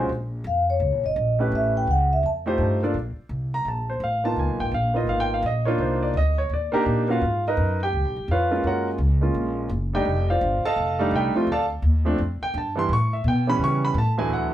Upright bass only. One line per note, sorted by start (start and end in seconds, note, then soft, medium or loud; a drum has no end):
0.09 0.44 A#1 medium
0.44 0.79 F2 loud
0.80 0.92 C#2 medium
0.92 1.03 A#1 medium
1.03 1.15 F#1 medium
1.16 1.51 A#1 medium
1.52 1.86 A1 medium
1.87 2.22 C#2 medium
2.23 2.57 F2 medium
2.58 2.93 G2 medium
2.94 3.15 A#1 medium
3.16 muted upright bass stroke soft
3.29 3.64 C2 medium
3.65 4.00 A#1 medium
4.00 4.35 A1 medium
4.36 4.48 C#2 medium
4.48 4.59 B1 medium
4.59 4.71 G#1 medium
4.72 5.06 A#1 medium
5.07 5.42 G#1 medium
5.42 5.78 A#1 loud
5.78 6.13 C2 medium
6.14 6.49 D2 medium
6.49 6.71 D#2 medium
6.73 muted upright bass stroke soft
6.86 7.20 A#2 medium
7.21 7.56 G#2 medium
7.57 7.92 F#2 medium
7.93 8.04 C#2 medium
8.04 8.16 B1 medium
8.16 8.27 G#1 medium
8.28 8.63 F2 loud
8.63 8.98 F#2 medium
8.98 9.33 C#2 medium
9.34 9.69 A#1 medium
9.69 10.04 F#1 loud
10.05 10.40 F1 medium
10.41 10.62 G1 medium
10.63 muted upright bass stroke soft
10.76 11.10 F1 medium
11.11 11.33 C2 medium
11.34 muted upright bass stroke soft
11.47 11.82 D2 medium
11.82 12.17 D#2 medium
12.18 12.39 F2 medium
12.41 muted upright bass stroke soft
12.54 12.88 G2 loud
12.89 13.23 A2 medium
13.24 13.58 B2 loud
13.59 13.94 C#3 medium
13.94 14.29 A2 loud
14.30 14.51 D2 medium